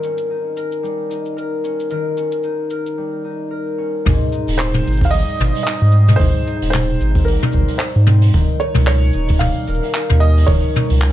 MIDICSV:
0, 0, Header, 1, 5, 480
1, 0, Start_track
1, 0, Key_signature, -4, "major"
1, 0, Tempo, 535714
1, 1715, Time_signature, 4, 2, 24, 8
1, 9968, End_track
2, 0, Start_track
2, 0, Title_t, "Felt piano"
2, 0, Program_c, 0, 0
2, 4100, Note_on_c, 0, 72, 97
2, 4523, Note_on_c, 0, 77, 87
2, 4545, Note_off_c, 0, 72, 0
2, 4575, Note_on_c, 0, 75, 109
2, 4587, Note_off_c, 0, 77, 0
2, 5032, Note_off_c, 0, 75, 0
2, 5045, Note_on_c, 0, 75, 97
2, 5519, Note_on_c, 0, 72, 102
2, 5555, Note_off_c, 0, 75, 0
2, 5992, Note_off_c, 0, 72, 0
2, 6005, Note_on_c, 0, 72, 93
2, 6465, Note_off_c, 0, 72, 0
2, 6493, Note_on_c, 0, 70, 83
2, 6950, Note_off_c, 0, 70, 0
2, 6970, Note_on_c, 0, 72, 74
2, 7330, Note_off_c, 0, 72, 0
2, 7703, Note_on_c, 0, 73, 91
2, 7931, Note_off_c, 0, 73, 0
2, 7945, Note_on_c, 0, 73, 102
2, 8415, Note_on_c, 0, 77, 109
2, 8444, Note_off_c, 0, 73, 0
2, 9141, Note_on_c, 0, 75, 105
2, 9167, Note_off_c, 0, 77, 0
2, 9370, Note_off_c, 0, 75, 0
2, 9377, Note_on_c, 0, 73, 93
2, 9968, Note_off_c, 0, 73, 0
2, 9968, End_track
3, 0, Start_track
3, 0, Title_t, "Harp"
3, 0, Program_c, 1, 46
3, 0, Note_on_c, 1, 51, 68
3, 0, Note_on_c, 1, 55, 53
3, 0, Note_on_c, 1, 56, 69
3, 0, Note_on_c, 1, 63, 52
3, 0, Note_on_c, 1, 70, 57
3, 31, Note_on_c, 1, 61, 54
3, 231, Note_off_c, 1, 56, 0
3, 267, Note_off_c, 1, 63, 0
3, 270, Note_on_c, 1, 63, 54
3, 506, Note_off_c, 1, 70, 0
3, 510, Note_on_c, 1, 70, 57
3, 739, Note_off_c, 1, 55, 0
3, 743, Note_on_c, 1, 55, 57
3, 980, Note_off_c, 1, 63, 0
3, 983, Note_on_c, 1, 63, 56
3, 1220, Note_off_c, 1, 70, 0
3, 1224, Note_on_c, 1, 70, 63
3, 1463, Note_off_c, 1, 61, 0
3, 1466, Note_on_c, 1, 61, 56
3, 1703, Note_off_c, 1, 51, 0
3, 1706, Note_on_c, 1, 51, 71
3, 1707, Note_off_c, 1, 70, 0
3, 1711, Note_on_c, 1, 70, 62
3, 1939, Note_off_c, 1, 61, 0
3, 1942, Note_on_c, 1, 61, 53
3, 2183, Note_off_c, 1, 63, 0
3, 2186, Note_on_c, 1, 63, 58
3, 2420, Note_off_c, 1, 70, 0
3, 2424, Note_on_c, 1, 70, 58
3, 2663, Note_off_c, 1, 55, 0
3, 2667, Note_on_c, 1, 55, 57
3, 2903, Note_off_c, 1, 63, 0
3, 2907, Note_on_c, 1, 63, 52
3, 3138, Note_off_c, 1, 70, 0
3, 3141, Note_on_c, 1, 70, 64
3, 3384, Note_off_c, 1, 61, 0
3, 3388, Note_on_c, 1, 61, 57
3, 3630, Note_on_c, 1, 44, 85
3, 3864, Note_off_c, 1, 63, 0
3, 3868, Note_on_c, 1, 63, 59
3, 4167, Note_off_c, 1, 61, 0
3, 4347, Note_off_c, 1, 63, 0
3, 4351, Note_on_c, 1, 63, 63
3, 4592, Note_off_c, 1, 55, 0
3, 4595, Note_on_c, 1, 55, 67
3, 4833, Note_on_c, 1, 72, 73
3, 5042, Note_off_c, 1, 70, 0
3, 5067, Note_off_c, 1, 63, 0
3, 5070, Note_on_c, 1, 63, 62
3, 5313, Note_on_c, 1, 60, 66
3, 5543, Note_off_c, 1, 44, 0
3, 5554, Note_on_c, 1, 44, 76
3, 5788, Note_off_c, 1, 63, 0
3, 5792, Note_on_c, 1, 63, 62
3, 6037, Note_off_c, 1, 60, 0
3, 6040, Note_on_c, 1, 60, 67
3, 6266, Note_off_c, 1, 63, 0
3, 6270, Note_on_c, 1, 63, 63
3, 6506, Note_off_c, 1, 55, 0
3, 6509, Note_on_c, 1, 55, 66
3, 6744, Note_off_c, 1, 72, 0
3, 6755, Note_on_c, 1, 72, 68
3, 6989, Note_off_c, 1, 63, 0
3, 6992, Note_on_c, 1, 63, 61
3, 7224, Note_off_c, 1, 60, 0
3, 7227, Note_on_c, 1, 60, 66
3, 7469, Note_off_c, 1, 51, 0
3, 7473, Note_on_c, 1, 51, 85
3, 7520, Note_off_c, 1, 44, 0
3, 7700, Note_off_c, 1, 63, 0
3, 7704, Note_on_c, 1, 63, 63
3, 7939, Note_on_c, 1, 61, 66
3, 7993, Note_off_c, 1, 60, 0
3, 7993, Note_off_c, 1, 72, 0
3, 8186, Note_off_c, 1, 63, 0
3, 8189, Note_on_c, 1, 63, 68
3, 8428, Note_off_c, 1, 55, 0
3, 8431, Note_on_c, 1, 55, 65
3, 8667, Note_on_c, 1, 70, 67
3, 8914, Note_off_c, 1, 63, 0
3, 8917, Note_on_c, 1, 63, 62
3, 9151, Note_off_c, 1, 61, 0
3, 9155, Note_on_c, 1, 61, 61
3, 9389, Note_off_c, 1, 51, 0
3, 9393, Note_on_c, 1, 51, 82
3, 9627, Note_off_c, 1, 63, 0
3, 9631, Note_on_c, 1, 63, 62
3, 9873, Note_off_c, 1, 61, 0
3, 9877, Note_on_c, 1, 61, 61
3, 9968, Note_off_c, 1, 51, 0
3, 9968, Note_off_c, 1, 55, 0
3, 9968, Note_off_c, 1, 61, 0
3, 9968, Note_off_c, 1, 63, 0
3, 9968, Note_off_c, 1, 70, 0
3, 9968, End_track
4, 0, Start_track
4, 0, Title_t, "Analog synth bass"
4, 0, Program_c, 2, 38
4, 3641, Note_on_c, 2, 32, 99
4, 3742, Note_off_c, 2, 32, 0
4, 4011, Note_on_c, 2, 27, 88
4, 4318, Note_off_c, 2, 27, 0
4, 4365, Note_on_c, 2, 32, 87
4, 4686, Note_off_c, 2, 32, 0
4, 4838, Note_on_c, 2, 32, 95
4, 4941, Note_off_c, 2, 32, 0
4, 5210, Note_on_c, 2, 44, 103
4, 5517, Note_off_c, 2, 44, 0
4, 5554, Note_on_c, 2, 32, 99
4, 5659, Note_off_c, 2, 32, 0
4, 5933, Note_on_c, 2, 27, 83
4, 6239, Note_off_c, 2, 27, 0
4, 6279, Note_on_c, 2, 32, 97
4, 6603, Note_off_c, 2, 32, 0
4, 6757, Note_on_c, 2, 32, 95
4, 6860, Note_off_c, 2, 32, 0
4, 7128, Note_on_c, 2, 44, 107
4, 7436, Note_off_c, 2, 44, 0
4, 7471, Note_on_c, 2, 27, 93
4, 7577, Note_off_c, 2, 27, 0
4, 7849, Note_on_c, 2, 37, 83
4, 8157, Note_off_c, 2, 37, 0
4, 8195, Note_on_c, 2, 27, 97
4, 8521, Note_off_c, 2, 27, 0
4, 8676, Note_on_c, 2, 27, 96
4, 8780, Note_off_c, 2, 27, 0
4, 9053, Note_on_c, 2, 39, 111
4, 9359, Note_off_c, 2, 39, 0
4, 9387, Note_on_c, 2, 27, 106
4, 9495, Note_off_c, 2, 27, 0
4, 9770, Note_on_c, 2, 37, 85
4, 9968, Note_off_c, 2, 37, 0
4, 9968, End_track
5, 0, Start_track
5, 0, Title_t, "Drums"
5, 30, Note_on_c, 9, 69, 65
5, 120, Note_off_c, 9, 69, 0
5, 159, Note_on_c, 9, 69, 54
5, 248, Note_off_c, 9, 69, 0
5, 510, Note_on_c, 9, 69, 86
5, 600, Note_off_c, 9, 69, 0
5, 644, Note_on_c, 9, 69, 51
5, 734, Note_off_c, 9, 69, 0
5, 759, Note_on_c, 9, 69, 40
5, 848, Note_off_c, 9, 69, 0
5, 995, Note_on_c, 9, 69, 81
5, 1085, Note_off_c, 9, 69, 0
5, 1125, Note_on_c, 9, 69, 50
5, 1214, Note_off_c, 9, 69, 0
5, 1236, Note_on_c, 9, 69, 37
5, 1326, Note_off_c, 9, 69, 0
5, 1475, Note_on_c, 9, 69, 70
5, 1564, Note_off_c, 9, 69, 0
5, 1612, Note_on_c, 9, 69, 55
5, 1702, Note_off_c, 9, 69, 0
5, 1704, Note_on_c, 9, 69, 46
5, 1794, Note_off_c, 9, 69, 0
5, 1948, Note_on_c, 9, 69, 63
5, 2037, Note_off_c, 9, 69, 0
5, 2078, Note_on_c, 9, 69, 52
5, 2167, Note_off_c, 9, 69, 0
5, 2181, Note_on_c, 9, 69, 47
5, 2270, Note_off_c, 9, 69, 0
5, 2422, Note_on_c, 9, 69, 67
5, 2512, Note_off_c, 9, 69, 0
5, 2564, Note_on_c, 9, 69, 50
5, 2654, Note_off_c, 9, 69, 0
5, 3636, Note_on_c, 9, 46, 66
5, 3637, Note_on_c, 9, 45, 79
5, 3639, Note_on_c, 9, 69, 49
5, 3643, Note_on_c, 9, 36, 110
5, 3726, Note_off_c, 9, 46, 0
5, 3727, Note_off_c, 9, 45, 0
5, 3728, Note_off_c, 9, 69, 0
5, 3733, Note_off_c, 9, 36, 0
5, 3876, Note_on_c, 9, 69, 73
5, 3966, Note_off_c, 9, 69, 0
5, 4012, Note_on_c, 9, 69, 59
5, 4016, Note_on_c, 9, 46, 70
5, 4102, Note_off_c, 9, 69, 0
5, 4106, Note_off_c, 9, 46, 0
5, 4117, Note_on_c, 9, 39, 111
5, 4118, Note_on_c, 9, 69, 55
5, 4207, Note_off_c, 9, 39, 0
5, 4207, Note_off_c, 9, 69, 0
5, 4248, Note_on_c, 9, 45, 71
5, 4337, Note_off_c, 9, 45, 0
5, 4367, Note_on_c, 9, 69, 85
5, 4412, Note_off_c, 9, 69, 0
5, 4412, Note_on_c, 9, 69, 73
5, 4452, Note_off_c, 9, 69, 0
5, 4452, Note_on_c, 9, 69, 59
5, 4492, Note_on_c, 9, 36, 96
5, 4506, Note_on_c, 9, 46, 62
5, 4512, Note_off_c, 9, 69, 0
5, 4512, Note_on_c, 9, 69, 50
5, 4533, Note_off_c, 9, 69, 0
5, 4533, Note_on_c, 9, 69, 40
5, 4576, Note_off_c, 9, 69, 0
5, 4576, Note_on_c, 9, 69, 33
5, 4581, Note_off_c, 9, 36, 0
5, 4595, Note_off_c, 9, 46, 0
5, 4598, Note_on_c, 9, 46, 54
5, 4603, Note_off_c, 9, 69, 0
5, 4603, Note_on_c, 9, 69, 51
5, 4688, Note_off_c, 9, 46, 0
5, 4693, Note_off_c, 9, 69, 0
5, 4841, Note_on_c, 9, 69, 83
5, 4843, Note_on_c, 9, 45, 78
5, 4904, Note_off_c, 9, 69, 0
5, 4904, Note_on_c, 9, 69, 62
5, 4933, Note_off_c, 9, 45, 0
5, 4971, Note_off_c, 9, 69, 0
5, 4971, Note_on_c, 9, 69, 61
5, 4975, Note_off_c, 9, 69, 0
5, 4975, Note_on_c, 9, 69, 57
5, 4982, Note_on_c, 9, 46, 69
5, 5030, Note_off_c, 9, 69, 0
5, 5030, Note_on_c, 9, 69, 47
5, 5071, Note_off_c, 9, 46, 0
5, 5079, Note_off_c, 9, 69, 0
5, 5079, Note_on_c, 9, 69, 50
5, 5080, Note_on_c, 9, 46, 56
5, 5084, Note_on_c, 9, 39, 90
5, 5168, Note_off_c, 9, 69, 0
5, 5169, Note_off_c, 9, 46, 0
5, 5174, Note_off_c, 9, 39, 0
5, 5304, Note_on_c, 9, 69, 90
5, 5393, Note_off_c, 9, 69, 0
5, 5446, Note_on_c, 9, 69, 54
5, 5449, Note_on_c, 9, 46, 74
5, 5452, Note_on_c, 9, 45, 71
5, 5535, Note_off_c, 9, 69, 0
5, 5539, Note_off_c, 9, 46, 0
5, 5542, Note_off_c, 9, 45, 0
5, 5553, Note_on_c, 9, 36, 123
5, 5558, Note_on_c, 9, 69, 54
5, 5561, Note_on_c, 9, 46, 63
5, 5642, Note_off_c, 9, 36, 0
5, 5648, Note_off_c, 9, 69, 0
5, 5651, Note_off_c, 9, 46, 0
5, 5800, Note_on_c, 9, 69, 86
5, 5890, Note_off_c, 9, 69, 0
5, 5931, Note_on_c, 9, 46, 72
5, 5933, Note_on_c, 9, 69, 63
5, 6021, Note_off_c, 9, 46, 0
5, 6023, Note_off_c, 9, 69, 0
5, 6040, Note_on_c, 9, 39, 92
5, 6041, Note_on_c, 9, 45, 69
5, 6042, Note_on_c, 9, 46, 64
5, 6045, Note_on_c, 9, 69, 55
5, 6130, Note_off_c, 9, 39, 0
5, 6130, Note_off_c, 9, 45, 0
5, 6131, Note_off_c, 9, 46, 0
5, 6134, Note_off_c, 9, 69, 0
5, 6280, Note_on_c, 9, 69, 89
5, 6370, Note_off_c, 9, 69, 0
5, 6409, Note_on_c, 9, 36, 95
5, 6409, Note_on_c, 9, 46, 59
5, 6412, Note_on_c, 9, 69, 57
5, 6498, Note_off_c, 9, 36, 0
5, 6498, Note_off_c, 9, 46, 0
5, 6502, Note_off_c, 9, 69, 0
5, 6517, Note_on_c, 9, 69, 49
5, 6522, Note_on_c, 9, 46, 58
5, 6607, Note_off_c, 9, 69, 0
5, 6611, Note_off_c, 9, 46, 0
5, 6654, Note_on_c, 9, 45, 66
5, 6741, Note_on_c, 9, 69, 93
5, 6743, Note_off_c, 9, 45, 0
5, 6757, Note_on_c, 9, 36, 67
5, 6831, Note_off_c, 9, 69, 0
5, 6846, Note_off_c, 9, 36, 0
5, 6882, Note_on_c, 9, 46, 68
5, 6884, Note_on_c, 9, 69, 66
5, 6972, Note_off_c, 9, 46, 0
5, 6974, Note_off_c, 9, 69, 0
5, 6985, Note_on_c, 9, 39, 101
5, 6990, Note_on_c, 9, 69, 48
5, 6991, Note_on_c, 9, 46, 55
5, 7074, Note_off_c, 9, 39, 0
5, 7080, Note_off_c, 9, 46, 0
5, 7080, Note_off_c, 9, 69, 0
5, 7228, Note_on_c, 9, 45, 72
5, 7228, Note_on_c, 9, 69, 83
5, 7317, Note_off_c, 9, 45, 0
5, 7317, Note_off_c, 9, 69, 0
5, 7360, Note_on_c, 9, 46, 70
5, 7362, Note_on_c, 9, 69, 56
5, 7450, Note_off_c, 9, 46, 0
5, 7451, Note_off_c, 9, 69, 0
5, 7468, Note_on_c, 9, 69, 55
5, 7470, Note_on_c, 9, 46, 66
5, 7473, Note_on_c, 9, 36, 119
5, 7558, Note_off_c, 9, 69, 0
5, 7559, Note_off_c, 9, 46, 0
5, 7563, Note_off_c, 9, 36, 0
5, 7709, Note_on_c, 9, 69, 87
5, 7798, Note_off_c, 9, 69, 0
5, 7836, Note_on_c, 9, 45, 85
5, 7837, Note_on_c, 9, 69, 66
5, 7838, Note_on_c, 9, 46, 68
5, 7926, Note_off_c, 9, 45, 0
5, 7926, Note_off_c, 9, 69, 0
5, 7927, Note_off_c, 9, 46, 0
5, 7943, Note_on_c, 9, 69, 52
5, 7944, Note_on_c, 9, 46, 62
5, 7946, Note_on_c, 9, 39, 96
5, 8033, Note_off_c, 9, 69, 0
5, 8034, Note_off_c, 9, 46, 0
5, 8035, Note_off_c, 9, 39, 0
5, 8183, Note_on_c, 9, 69, 92
5, 8272, Note_off_c, 9, 69, 0
5, 8317, Note_on_c, 9, 46, 60
5, 8320, Note_on_c, 9, 69, 50
5, 8332, Note_on_c, 9, 36, 102
5, 8407, Note_off_c, 9, 46, 0
5, 8409, Note_off_c, 9, 69, 0
5, 8420, Note_on_c, 9, 69, 51
5, 8421, Note_off_c, 9, 36, 0
5, 8422, Note_on_c, 9, 46, 56
5, 8423, Note_on_c, 9, 45, 72
5, 8510, Note_off_c, 9, 69, 0
5, 8512, Note_off_c, 9, 46, 0
5, 8513, Note_off_c, 9, 45, 0
5, 8668, Note_on_c, 9, 69, 82
5, 8731, Note_off_c, 9, 69, 0
5, 8731, Note_on_c, 9, 69, 64
5, 8805, Note_on_c, 9, 46, 60
5, 8821, Note_off_c, 9, 69, 0
5, 8894, Note_off_c, 9, 46, 0
5, 8910, Note_on_c, 9, 39, 89
5, 8913, Note_on_c, 9, 46, 55
5, 8917, Note_on_c, 9, 69, 46
5, 8999, Note_off_c, 9, 39, 0
5, 9003, Note_off_c, 9, 46, 0
5, 9006, Note_off_c, 9, 69, 0
5, 9046, Note_on_c, 9, 45, 76
5, 9136, Note_off_c, 9, 45, 0
5, 9164, Note_on_c, 9, 69, 88
5, 9254, Note_off_c, 9, 69, 0
5, 9292, Note_on_c, 9, 69, 62
5, 9296, Note_on_c, 9, 46, 68
5, 9382, Note_off_c, 9, 69, 0
5, 9386, Note_off_c, 9, 46, 0
5, 9387, Note_on_c, 9, 36, 127
5, 9401, Note_on_c, 9, 69, 52
5, 9405, Note_on_c, 9, 46, 63
5, 9477, Note_off_c, 9, 36, 0
5, 9490, Note_off_c, 9, 69, 0
5, 9494, Note_off_c, 9, 46, 0
5, 9641, Note_on_c, 9, 45, 70
5, 9642, Note_on_c, 9, 69, 77
5, 9730, Note_off_c, 9, 45, 0
5, 9732, Note_off_c, 9, 69, 0
5, 9764, Note_on_c, 9, 46, 72
5, 9765, Note_on_c, 9, 69, 62
5, 9853, Note_off_c, 9, 46, 0
5, 9854, Note_off_c, 9, 69, 0
5, 9870, Note_on_c, 9, 39, 99
5, 9960, Note_off_c, 9, 39, 0
5, 9968, End_track
0, 0, End_of_file